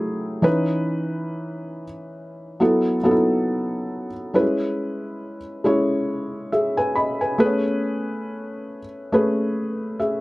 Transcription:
0.00 0.43 F#3 medium
0.00 0.43 A3 medium
0.00 0.43 E4 medium
0.00 0.44 G4 medium
0.00 0.47 G#4 medium
0.42 1.83 E3 medium
0.42 1.83 C#4 medium
0.42 1.84 D#4 medium
0.42 1.84 B4 loud
2.60 2.96 F#3 medium
2.60 2.97 B3 medium
2.60 2.97 E4 medium
2.60 2.97 A4 medium
3.03 4.06 F#3 medium
3.03 4.07 B3 medium
3.03 3.12 D#4 medium
3.03 4.07 A4 medium
3.11 4.10 E4 medium
4.34 4.41 G3 medium
4.34 5.37 C#4 medium
4.34 5.37 E4 medium
4.34 5.38 B4 medium
5.64 6.49 G#3 medium
5.64 6.49 C#4 medium
5.64 6.49 E4 medium
5.64 6.50 C#5 medium
6.52 6.76 G#4 medium
6.52 6.76 E5 medium
6.77 6.95 B4 medium
6.77 6.94 G#5 medium
6.95 7.20 D#5 medium
6.95 7.19 B5 medium
7.21 7.39 B4 medium
7.21 7.62 G#5 medium
7.38 8.79 A3 medium
7.38 7.46 B3 medium
7.38 8.80 G#4 medium
7.38 8.80 B4 loud
7.45 8.82 C#4 medium
9.12 9.97 A3 medium
9.12 9.97 C#4 medium
9.12 9.97 G#4 medium
9.12 9.98 B4 medium
10.00 10.21 G#4 medium
10.00 10.21 E5 medium

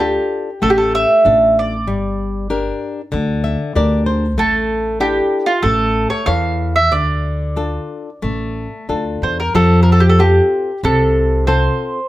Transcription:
0.00 0.17 D2 medium
0.00 0.49 D4 soft
0.00 0.49 F4 soft
0.00 0.59 G4 medium
0.00 0.50 A4 soft
0.62 1.03 A1 medium
0.62 1.23 A3 medium
0.62 0.70 A4 medium
0.70 0.77 G4 medium
0.78 0.94 A4 medium
0.95 1.59 E5 medium
1.25 1.89 A1 medium
1.25 1.76 D4 soft
1.25 1.75 F4 soft
1.25 1.76 A4 soft
1.59 2.48 D5 medium
1.87 2.70 G1 medium
1.87 2.49 G3 medium
2.50 3.00 D4 soft
2.50 3.00 G4 soft
2.50 3.01 A#4 soft
3.12 3.54 D2 medium
3.12 3.73 D3 medium
3.44 3.73 E5 medium
3.75 4.38 D2 medium
3.75 4.26 D4 soft
3.75 4.26 G4 soft
3.75 4.26 A#4 soft
3.75 4.05 D5 medium
4.06 4.36 C5 medium
4.38 5.19 A1 medium
4.38 4.99 A3 medium
4.38 5.00 A4 medium
5.00 5.51 D4 soft
5.00 5.51 E4 soft
5.00 5.46 G4 medium
5.00 5.51 A4 soft
5.46 5.63 F4 medium
5.63 6.05 A1 medium
5.63 6.25 A3 medium
5.63 6.07 A4 medium
6.10 6.27 C#5 medium
6.26 6.92 E2 medium
6.26 6.78 E3 soft
6.26 6.78 A4 soft
6.26 6.79 C#5 soft
6.26 6.75 F5 medium
6.76 6.92 E5 medium
6.91 7.77 D2 medium
6.91 7.54 D3 medium
6.91 8.84 D5 medium
7.56 8.09 D4 soft
7.56 8.09 F4 soft
7.56 8.09 A4 soft
8.22 8.66 A1 medium
8.22 8.87 A3 medium
8.89 9.18 D2 medium
8.89 9.41 D4 soft
8.89 9.41 F4 soft
8.89 9.41 A4 soft
9.22 9.51 E2 medium
9.22 9.39 C5 medium
9.40 9.55 A#4 medium
9.55 10.38 F2 medium
9.55 10.17 F3 medium
9.55 9.82 A4 medium
9.83 9.92 A#4 medium
9.92 10.01 A4 medium
10.00 10.09 G4 medium
10.09 10.19 A4 medium
10.18 10.70 C4 soft
10.18 10.71 F4 soft
10.18 10.80 G4 medium
10.18 10.71 A4 medium
10.83 11.67 C2 medium
10.83 11.46 C3 medium
10.83 11.44 A4 medium
11.47 11.99 C4 soft
11.47 11.99 F4 soft
11.47 11.99 A4 soft
11.47 12.08 C5 medium

